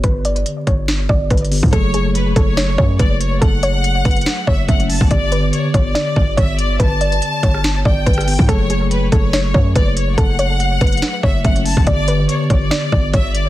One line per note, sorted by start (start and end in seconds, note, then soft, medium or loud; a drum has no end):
0.00 0.44 G1 loud
0.00 1.47 D3 medium
0.00 1.48 B3 medium
0.00 1.48 G4 medium
0.00 0.21 B4 loud
0.00 kick loud
0.00 closed hi-hat medium
0.25 0.65 D5 medium
0.25 closed hi-hat medium
0.36 closed hi-hat soft
0.46 closed hi-hat medium
0.67 1.08 G1 loud
0.67 1.07 C#5 medium
0.67 kick medium
0.67 closed hi-hat medium
0.88 snare loud
0.88 closed hi-hat medium
1.09 1.30 G1 loud
1.09 1.27 D5 medium
1.09 kick medium
1.30 1.62 G1 loud
1.30 1.70 B4 medium
1.30 kick medium
1.30 closed hi-hat medium
1.37 closed hi-hat medium
1.45 closed hi-hat medium
1.51 1.72 D3 soft
1.51 1.73 B3 soft
1.51 1.73 G4 medium
1.51 open hi-hat medium
1.63 1.72 G2 loud
1.63 kick loud
1.71 2.34 F#1 loud
1.71 4.64 F#3 medium
1.71 4.64 A3 medium
1.71 4.65 G#4 medium
1.71 1.90 A4 loud
1.71 2.12 C#5 loud
1.71 kick loud
1.71 closed hi-hat medium
1.94 2.34 G#4 medium
1.94 closed hi-hat medium
2.15 2.35 B4 medium
2.15 closed hi-hat medium
2.36 2.77 F#1 loud
2.36 2.54 A4 medium
2.36 2.96 C#5 medium
2.36 kick medium
2.36 closed hi-hat medium
2.57 2.75 C#5 medium
2.57 snare loud
2.57 closed hi-hat medium
2.78 2.99 F#2 loud
2.78 2.96 C#5 medium
2.78 kick medium
2.99 3.40 F#1 loud
2.99 3.39 B4 medium
2.99 3.20 D5 medium
2.99 kick loud
2.99 closed hi-hat medium
3.21 3.41 C#5 medium
3.21 closed hi-hat medium
3.41 4.03 F#1 loud
3.41 3.59 A4 loud
3.41 4.43 F#5 loud
3.41 kick loud
3.41 closed hi-hat medium
3.63 4.03 C#5 medium
3.63 closed hi-hat medium
3.84 closed hi-hat medium
4.05 4.25 F#1 loud
4.05 4.45 B4 medium
4.05 kick loud
4.05 closed hi-hat soft
4.11 closed hi-hat medium
4.16 closed hi-hat medium
4.21 closed hi-hat medium
4.26 snare loud
4.26 closed hi-hat medium
4.47 4.68 F#1 loud
4.47 4.65 C#5 medium
4.47 4.67 E5 loud
4.47 kick loud
4.68 5.00 F#1 loud
4.68 5.10 F#3 medium
4.68 5.11 A3 soft
4.68 5.11 C#4 medium
4.68 5.08 E5 medium
4.68 4.89 F#5 medium
4.68 kick loud
4.68 closed hi-hat medium
4.80 closed hi-hat medium
4.90 5.10 A5 medium
4.90 open hi-hat medium
5.01 5.10 F#1 loud
5.01 kick loud
5.09 5.51 G1 loud
5.09 8.23 D3 medium
5.09 8.24 B3 medium
5.09 8.24 G4 medium
5.09 5.50 D5 loud
5.09 5.28 D5 loud
5.09 kick loud
5.09 closed hi-hat medium
5.32 5.72 B4 medium
5.32 closed hi-hat medium
5.53 5.73 C#5 medium
5.53 closed hi-hat medium
5.74 5.94 G1 loud
5.74 5.92 C#5 medium
5.74 6.34 D5 medium
5.74 kick medium
5.74 closed hi-hat medium
5.95 6.12 D5 medium
5.95 snare loud
5.95 closed hi-hat medium
6.16 6.37 G1 loud
6.16 6.34 D5 medium
6.16 kick medium
6.37 6.78 G1 loud
6.37 6.77 C#5 medium
6.37 6.58 E5 loud
6.37 kick loud
6.37 closed hi-hat medium
6.59 6.79 D5 medium
6.59 closed hi-hat medium
6.80 7.20 G1 loud
6.80 6.97 B4 loud
6.80 7.81 A5 loud
6.80 kick loud
6.80 closed hi-hat medium
7.01 7.41 D5 medium
7.01 closed hi-hat medium
7.12 closed hi-hat soft
7.22 closed hi-hat medium
7.43 7.84 G1 loud
7.43 7.83 C#5 medium
7.43 kick medium
7.43 closed hi-hat medium
7.54 cross-stick medium
7.64 snare loud
7.64 closed hi-hat medium
7.85 8.06 G1 loud
7.85 8.03 D5 medium
7.85 8.45 G5 medium
7.85 kick loud
8.06 8.38 G1 loud
8.06 8.46 B4 medium
8.06 kick medium
8.06 closed hi-hat medium
8.14 closed hi-hat medium
8.18 cross-stick medium
8.18 closed hi-hat medium
8.27 8.48 D3 soft
8.27 8.49 B3 soft
8.27 8.49 G4 medium
8.27 open hi-hat medium
8.39 8.48 G2 loud
8.39 kick loud
8.48 9.10 F#1 loud
8.48 11.40 F#3 medium
8.48 11.41 A3 medium
8.48 11.41 G#4 medium
8.48 8.66 A4 loud
8.48 8.89 C#5 loud
8.48 kick loud
8.48 closed hi-hat medium
8.70 9.10 G#4 medium
8.70 closed hi-hat medium
8.91 9.11 B4 medium
8.91 closed hi-hat medium
9.12 9.53 F#1 loud
9.12 9.30 A4 medium
9.12 9.72 C#5 medium
9.12 kick loud
9.12 closed hi-hat medium
9.33 9.51 C#5 medium
9.33 snare loud
9.33 closed hi-hat medium
9.54 9.75 F#2 loud
9.54 9.72 C#5 medium
9.54 kick medium
9.75 10.16 F#1 loud
9.75 10.15 B4 medium
9.75 9.96 D5 medium
9.75 kick loud
9.75 closed hi-hat medium
9.97 10.17 C#5 medium
9.97 closed hi-hat medium
10.18 10.79 F#1 loud
10.18 10.35 A4 loud
10.18 11.19 F#5 loud
10.18 kick loud
10.18 closed hi-hat medium
10.39 10.79 C#5 medium
10.39 closed hi-hat medium
10.60 closed hi-hat medium
10.81 11.01 F#1 loud
10.81 11.21 B4 medium
10.81 kick medium
10.81 closed hi-hat soft
10.87 closed hi-hat soft
10.92 closed hi-hat medium
10.97 closed hi-hat medium
11.02 snare loud
11.02 closed hi-hat medium
11.23 11.44 F#1 loud
11.23 11.41 C#5 medium
11.23 11.43 E5 medium
11.23 kick medium
11.44 11.76 F#1 loud
11.44 11.86 F#3 medium
11.44 11.87 A3 medium
11.44 11.87 C#4 medium
11.44 11.84 E5 medium
11.44 11.65 F#5 medium
11.44 kick loud
11.44 closed hi-hat medium
11.56 closed hi-hat medium
11.66 11.86 A5 medium
11.66 open hi-hat medium
11.77 11.86 F#1 loud
11.77 kick loud
11.86 12.27 G1 loud
11.86 13.49 D3 medium
11.86 13.49 B3 medium
11.86 13.49 G4 medium
11.86 12.27 D5 loud
11.86 12.05 D5 loud
11.86 kick loud
11.86 closed hi-hat medium
12.08 12.48 B4 medium
12.08 closed hi-hat medium
12.29 12.49 C#5 medium
12.29 closed hi-hat medium
12.50 12.70 G1 loud
12.50 12.68 C#5 medium
12.50 13.10 D5 medium
12.50 kick medium
12.50 closed hi-hat medium
12.71 12.89 D5 medium
12.71 snare loud
12.71 closed hi-hat medium
12.92 13.13 G1 loud
12.92 13.10 D5 medium
12.92 kick loud
13.13 13.49 G1 loud
13.13 13.49 C#5 medium
13.13 13.34 E5 loud
13.13 kick loud
13.13 closed hi-hat medium
13.35 13.49 D5 medium
13.35 closed hi-hat medium